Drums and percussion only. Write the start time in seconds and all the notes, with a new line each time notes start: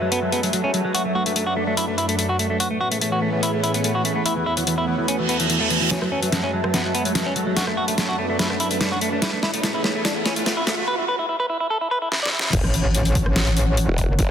0.12 closed hi-hat
0.32 closed hi-hat
0.43 closed hi-hat
0.53 closed hi-hat
0.74 closed hi-hat
0.95 closed hi-hat
1.26 closed hi-hat
1.36 closed hi-hat
1.77 closed hi-hat
1.98 closed hi-hat
2.09 closed hi-hat
2.19 closed hi-hat
2.39 closed hi-hat
2.60 closed hi-hat
2.92 closed hi-hat
3.01 closed hi-hat
3.43 closed hi-hat
3.64 closed hi-hat
3.74 closed hi-hat
3.84 closed hi-hat
4.05 closed hi-hat
4.26 closed hi-hat
4.57 closed hi-hat
4.67 closed hi-hat
5.08 closed hi-hat
5.29 closed hi-hat
5.40 closed hi-hat
5.50 closed hi-hat
5.70 closed hi-hat
5.91 snare, closed hi-hat
6.02 cross-stick
6.23 closed hi-hat
6.32 snare, closed hi-hat
6.64 cross-stick
6.74 snare, closed hi-hat
6.95 closed hi-hat
7.05 closed hi-hat
7.15 snare, closed hi-hat
7.36 closed hi-hat
7.57 snare, closed hi-hat
7.67 cross-stick
7.88 closed hi-hat
7.98 snare, closed hi-hat
8.39 snare, closed hi-hat
8.50 cross-stick
8.60 closed hi-hat
8.71 closed hi-hat
8.81 snare, closed hi-hat
9.01 closed hi-hat
9.22 snare, closed hi-hat
9.43 snare
9.54 closed hi-hat
9.64 snare, closed hi-hat
9.84 snare
10.05 snare, closed hi-hat
10.26 snare, closed hi-hat
10.36 closed hi-hat
10.46 snare, closed hi-hat
10.67 snare, closed hi-hat
12.12 snare
12.26 snare
12.39 snare
12.53 kick, closed hi-hat, crash
12.64 cross-stick
12.74 closed hi-hat
12.95 closed hi-hat
13.05 closed hi-hat
13.15 kick, closed hi-hat
13.26 cross-stick
13.36 snare, closed hi-hat
13.47 closed hi-hat
13.57 closed hi-hat
13.77 closed hi-hat
13.98 kick, closed hi-hat
14.19 kick, closed hi-hat